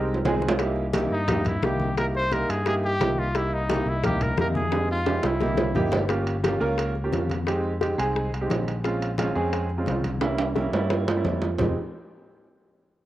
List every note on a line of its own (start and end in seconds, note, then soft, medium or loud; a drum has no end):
0.00 0.22 C2 medium
0.00 0.16 G#3 medium
0.00 0.16 C4 medium
0.00 0.16 D#4 medium
0.00 0.16 G4 loud
0.00 0.43 A#4 loud
0.09 high conga soft
0.14 low timbale medium
0.25 1.06 C2 medium
0.25 0.50 G#3 loud
0.25 0.50 C4 medium
0.25 0.50 D#4 medium
0.25 0.50 G#4 loud
0.25 low bongo medium
0.25 high conga medium
0.25 low timbale loud
0.42 low bongo medium
0.42 high conga soft
0.48 low timbale loud
0.59 0.84 A#3 medium
0.59 0.84 D#4 medium
0.59 0.84 E4 medium
0.59 0.84 G4 medium
0.59 high bongo medium
0.59 high conga soft
0.59 high timbale medium
0.76 high conga soft
0.93 1.18 A#3 medium
0.93 1.18 D#4 medium
0.93 1.18 E4 medium
0.93 1.18 G4 medium
0.93 high bongo medium
0.93 high conga medium
0.93 high timbale medium
1.10 1.59 G2 medium
1.10 1.48 D#4 loud
1.10 high conga soft
1.28 1.53 A#3 medium
1.28 1.52 D#4 medium
1.28 1.53 E4 medium
1.28 1.53 G4 medium
1.28 high bongo medium
1.28 high conga soft
1.28 low conga medium
1.28 high timbale loud
1.45 1.66 E4 medium
1.45 high conga soft
1.45 low conga medium
1.45 high timbale medium
1.62 2.43 C2 medium
1.62 1.87 A#3 medium
1.62 1.87 D#4 medium
1.62 1.87 E4 medium
1.62 1.87 G4 medium
1.62 1.97 G4 loud
1.62 high bongo medium
1.62 low bongo medium
1.62 high conga medium
1.80 high conga medium
1.97 2.22 A#3 medium
1.97 2.22 D#4 medium
1.97 2.22 E4 medium
1.97 2.22 G4 medium
1.97 2.06 A#4 loud
1.97 high bongo medium
1.97 high conga soft
1.97 high timbale medium
2.14 2.35 C5 loud
2.14 high bongo soft
2.14 high conga soft
2.32 2.56 A#3 medium
2.32 2.56 D#4 medium
2.32 2.56 E4 medium
2.32 2.56 G4 medium
2.32 2.51 A#4 loud
2.32 high bongo medium
2.32 high conga medium
2.32 high timbale medium
2.49 2.97 G2 medium
2.49 2.67 G#4 medium
2.49 high bongo soft
2.49 high conga soft
2.49 high timbale medium
2.66 2.90 A#3 medium
2.66 2.90 D#4 medium
2.66 2.90 E4 medium
2.66 2.90 G4 medium
2.66 2.75 G#4 loud
2.66 high bongo medium
2.66 high conga soft
2.66 high timbale medium
2.83 3.20 G4 loud
2.83 high bongo soft
2.83 high conga soft
3.00 3.80 C2 medium
3.00 3.25 A#3 medium
3.00 3.25 D#4 medium
3.00 3.25 E4 medium
3.00 3.25 G4 medium
3.00 high bongo medium
3.00 low bongo medium
3.00 high conga medium
3.00 high timbale medium
3.00 low timbale medium
3.18 3.38 F4 loud
3.18 high conga soft
3.35 3.59 A#3 medium
3.35 3.59 D#4 medium
3.35 3.59 E4 medium
3.35 3.55 E4 medium
3.35 3.59 G4 medium
3.35 high bongo medium
3.35 high conga soft
3.35 high timbale medium
3.53 3.90 D#4 loud
3.53 high conga soft
3.69 3.93 A#3 medium
3.69 3.93 D#4 medium
3.69 3.93 E4 medium
3.69 3.93 G4 medium
3.69 high bongo medium
3.69 high conga medium
3.69 high timbale loud
3.86 4.34 C2 medium
3.86 4.05 E4 medium
3.86 high conga soft
4.04 4.28 A#3 medium
4.04 4.28 D#4 medium
4.04 4.28 E4 medium
4.04 4.24 G4 loud
4.04 4.28 A#4 medium
4.04 high bongo medium
4.04 high conga soft
4.04 low conga medium
4.04 high timbale loud
4.21 4.39 A#4 medium
4.21 high conga soft
4.21 low conga medium
4.21 high timbale medium
4.37 5.18 F2 medium
4.37 4.62 A#3 medium
4.37 4.62 D#4 medium
4.37 4.62 E4 medium
4.37 4.62 G4 medium
4.37 4.47 A#4 medium
4.37 high bongo medium
4.37 low bongo medium
4.37 high conga medium
4.55 4.87 G#4 medium
4.55 high conga medium
4.72 4.96 G#3 medium
4.72 4.96 C4 medium
4.72 4.96 D#4 medium
4.72 4.96 G4 medium
4.72 high bongo medium
4.72 high conga soft
4.72 high timbale medium
4.89 5.27 F4 loud
4.89 high bongo soft
4.89 high conga soft
5.06 5.31 G#3 medium
5.06 5.31 C4 medium
5.06 5.31 D#4 medium
5.06 5.31 G4 medium
5.06 high bongo medium
5.06 high conga medium
5.06 high timbale loud
5.23 5.71 C2 loud
5.23 5.94 E4 medium
5.23 high bongo medium
5.23 high conga soft
5.23 low timbale medium
5.41 5.65 A#3 medium
5.41 5.65 D#4 medium
5.41 5.65 E4 medium
5.41 5.65 G4 medium
5.41 high bongo loud
5.41 high conga medium
5.57 high bongo loud
5.57 high conga medium
5.57 low timbale medium
5.75 6.55 G1 medium
5.75 6.00 A#3 medium
5.75 5.99 D#4 medium
5.75 6.00 E4 medium
5.75 6.00 G4 loud
5.75 low bongo medium
5.75 low conga medium
5.92 low bongo medium
5.92 low conga medium
5.92 low timbale loud
6.09 6.34 A#3 medium
6.09 6.34 C#4 medium
6.09 6.34 F4 medium
6.09 6.34 G4 loud
6.09 high bongo medium
6.09 high conga soft
6.09 high timbale medium
6.27 high conga soft
6.27 high timbale medium
6.44 6.56 A#3 medium
6.44 6.56 C#4 medium
6.44 6.56 F4 medium
6.44 6.56 G4 loud
6.44 high bongo medium
6.44 high conga medium
6.44 high timbale medium
6.60 7.09 C#2 medium
6.60 6.91 A#3 medium
6.60 6.91 C#4 medium
6.60 6.91 F4 medium
6.60 6.91 A#4 loud
6.60 high bongo soft
6.60 high conga soft
6.78 high bongo medium
6.78 high conga soft
6.78 high timbale medium
6.95 high bongo soft
6.95 high conga soft
7.04 7.34 A#3 medium
7.04 7.34 C#4 medium
7.04 7.34 F4 medium
7.04 7.34 G4 medium
7.12 7.93 F2 medium
7.12 high bongo soft
7.12 low bongo medium
7.12 high conga medium
7.12 high timbale medium
7.12 low timbale medium
7.30 high bongo soft
7.30 high conga medium
7.30 high timbale medium
7.47 7.71 G#3 medium
7.47 7.71 C4 medium
7.47 7.71 D#4 medium
7.47 7.71 G4 loud
7.47 high bongo medium
7.47 high conga soft
7.47 high timbale medium
7.64 high conga soft
7.81 7.93 G#3 medium
7.81 7.93 C4 medium
7.81 7.93 D#4 medium
7.81 7.93 G4 loud
7.81 high bongo medium
7.81 high conga medium
7.81 high timbale medium
7.98 8.30 C2 medium
7.98 8.28 G#3 loud
7.98 8.28 C4 medium
7.98 8.28 D#4 medium
7.98 8.29 G#4 loud
7.98 high bongo soft
7.98 high conga soft
7.98 high timbale medium
8.16 high bongo medium
8.16 high conga soft
8.32 8.49 C2 medium
8.32 high bongo soft
8.32 high conga soft
8.32 high timbale medium
8.41 8.71 G#3 medium
8.41 8.71 C4 medium
8.41 8.71 D#4 medium
8.41 8.72 G4 medium
8.50 9.30 A#1 medium
8.50 high bongo soft
8.50 low bongo medium
8.50 high conga medium
8.50 high timbale medium
8.50 low timbale medium
8.68 high bongo soft
8.68 high timbale medium
8.84 9.08 G#3 medium
8.84 9.09 C4 medium
8.84 9.09 C#4 medium
8.84 9.08 F4 loud
8.84 high bongo medium
8.84 high conga soft
8.84 high timbale medium
9.01 high conga soft
9.01 high timbale medium
9.18 9.31 G#3 medium
9.18 9.31 C4 medium
9.18 9.31 C#4 medium
9.18 9.31 F4 loud
9.18 high bongo medium
9.18 high conga medium
9.18 high timbale medium
9.35 9.84 F2 loud
9.35 9.66 G#3 medium
9.35 9.66 C4 medium
9.35 9.66 C#4 medium
9.35 9.66 G#4 loud
9.35 high bongo soft
9.35 high conga soft
9.52 high bongo medium
9.52 high conga soft
9.52 high timbale medium
9.69 high bongo soft
9.69 high conga soft
9.78 10.09 G#3 medium
9.78 10.09 C4 medium
9.78 10.09 C#4 medium
9.78 10.08 F4 medium
9.86 10.67 C2 medium
9.86 high bongo soft
9.86 low bongo medium
9.86 high conga medium
9.86 high timbale medium
9.86 low timbale medium
10.04 high bongo soft
10.04 high conga medium
10.04 high timbale medium
10.21 10.46 G3 medium
10.21 10.46 A#3 medium
10.21 10.46 C#4 medium
10.21 10.46 E4 loud
10.21 high bongo medium
10.21 high conga soft
10.21 high timbale medium
10.39 high conga soft
10.39 high timbale loud
10.56 10.68 G3 medium
10.56 10.68 A#3 medium
10.56 10.68 C#4 medium
10.56 10.68 E4 medium
10.56 high bongo medium
10.56 high conga medium
10.56 high timbale medium
10.73 11.05 G2 medium
10.73 11.04 G3 medium
10.73 11.04 A#3 medium
10.73 11.04 C#4 medium
10.73 11.04 E4 loud
10.73 high bongo soft
10.73 low timbale loud
10.90 high bongo medium
10.90 high conga soft
10.90 low timbale medium
11.07 11.23 G2 medium
11.07 high bongo soft
11.07 high conga soft
11.07 low timbale loud
11.16 11.46 G3 medium
11.16 11.47 A#3 medium
11.16 11.46 C#4 medium
11.16 11.47 E4 medium
11.24 11.55 F2 medium
11.24 high bongo soft
11.24 low bongo medium
11.24 high conga medium
11.24 low timbale medium
11.42 high bongo soft
11.42 low timbale medium
11.58 11.75 F1 medium
11.58 11.75 G#3 medium
11.58 11.75 C4 medium
11.58 11.75 D#4 medium
11.58 11.75 G4 medium
11.58 low bongo medium
11.58 low conga medium
11.58 low timbale medium